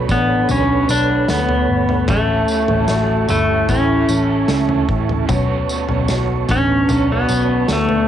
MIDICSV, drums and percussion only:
0, 0, Header, 1, 2, 480
1, 0, Start_track
1, 0, Key_signature, 2, "minor"
1, 0, Tempo, 800000
1, 1255, Time_signature, 4, 2, 24, 8
1, 4847, End_track
2, 0, Start_track
2, 0, Title_t, "Drums"
2, 54, Note_on_c, 9, 54, 69
2, 55, Note_on_c, 9, 36, 89
2, 114, Note_off_c, 9, 54, 0
2, 115, Note_off_c, 9, 36, 0
2, 292, Note_on_c, 9, 43, 59
2, 292, Note_on_c, 9, 54, 65
2, 352, Note_off_c, 9, 43, 0
2, 352, Note_off_c, 9, 54, 0
2, 533, Note_on_c, 9, 54, 76
2, 593, Note_off_c, 9, 54, 0
2, 770, Note_on_c, 9, 38, 106
2, 772, Note_on_c, 9, 54, 88
2, 830, Note_off_c, 9, 38, 0
2, 832, Note_off_c, 9, 54, 0
2, 892, Note_on_c, 9, 43, 62
2, 952, Note_off_c, 9, 43, 0
2, 1133, Note_on_c, 9, 43, 56
2, 1193, Note_off_c, 9, 43, 0
2, 1247, Note_on_c, 9, 43, 106
2, 1247, Note_on_c, 9, 54, 69
2, 1252, Note_on_c, 9, 36, 107
2, 1307, Note_off_c, 9, 43, 0
2, 1307, Note_off_c, 9, 54, 0
2, 1312, Note_off_c, 9, 36, 0
2, 1489, Note_on_c, 9, 54, 58
2, 1549, Note_off_c, 9, 54, 0
2, 1610, Note_on_c, 9, 43, 66
2, 1670, Note_off_c, 9, 43, 0
2, 1726, Note_on_c, 9, 54, 89
2, 1728, Note_on_c, 9, 38, 102
2, 1786, Note_off_c, 9, 54, 0
2, 1788, Note_off_c, 9, 38, 0
2, 1971, Note_on_c, 9, 43, 61
2, 1971, Note_on_c, 9, 54, 69
2, 2031, Note_off_c, 9, 43, 0
2, 2031, Note_off_c, 9, 54, 0
2, 2212, Note_on_c, 9, 43, 63
2, 2212, Note_on_c, 9, 54, 63
2, 2214, Note_on_c, 9, 36, 92
2, 2272, Note_off_c, 9, 43, 0
2, 2272, Note_off_c, 9, 54, 0
2, 2274, Note_off_c, 9, 36, 0
2, 2452, Note_on_c, 9, 54, 73
2, 2512, Note_off_c, 9, 54, 0
2, 2690, Note_on_c, 9, 38, 103
2, 2691, Note_on_c, 9, 54, 87
2, 2750, Note_off_c, 9, 38, 0
2, 2751, Note_off_c, 9, 54, 0
2, 2813, Note_on_c, 9, 43, 65
2, 2873, Note_off_c, 9, 43, 0
2, 2932, Note_on_c, 9, 36, 91
2, 2992, Note_off_c, 9, 36, 0
2, 3056, Note_on_c, 9, 43, 57
2, 3116, Note_off_c, 9, 43, 0
2, 3172, Note_on_c, 9, 43, 108
2, 3172, Note_on_c, 9, 54, 67
2, 3174, Note_on_c, 9, 36, 108
2, 3232, Note_off_c, 9, 43, 0
2, 3232, Note_off_c, 9, 54, 0
2, 3234, Note_off_c, 9, 36, 0
2, 3416, Note_on_c, 9, 54, 66
2, 3476, Note_off_c, 9, 54, 0
2, 3531, Note_on_c, 9, 43, 68
2, 3591, Note_off_c, 9, 43, 0
2, 3650, Note_on_c, 9, 54, 81
2, 3652, Note_on_c, 9, 38, 96
2, 3710, Note_off_c, 9, 54, 0
2, 3712, Note_off_c, 9, 38, 0
2, 3892, Note_on_c, 9, 43, 65
2, 3892, Note_on_c, 9, 54, 65
2, 3895, Note_on_c, 9, 36, 97
2, 3952, Note_off_c, 9, 43, 0
2, 3952, Note_off_c, 9, 54, 0
2, 3955, Note_off_c, 9, 36, 0
2, 4133, Note_on_c, 9, 43, 62
2, 4133, Note_on_c, 9, 54, 62
2, 4193, Note_off_c, 9, 43, 0
2, 4193, Note_off_c, 9, 54, 0
2, 4372, Note_on_c, 9, 54, 70
2, 4432, Note_off_c, 9, 54, 0
2, 4610, Note_on_c, 9, 38, 96
2, 4612, Note_on_c, 9, 54, 81
2, 4670, Note_off_c, 9, 38, 0
2, 4672, Note_off_c, 9, 54, 0
2, 4733, Note_on_c, 9, 43, 65
2, 4793, Note_off_c, 9, 43, 0
2, 4847, End_track
0, 0, End_of_file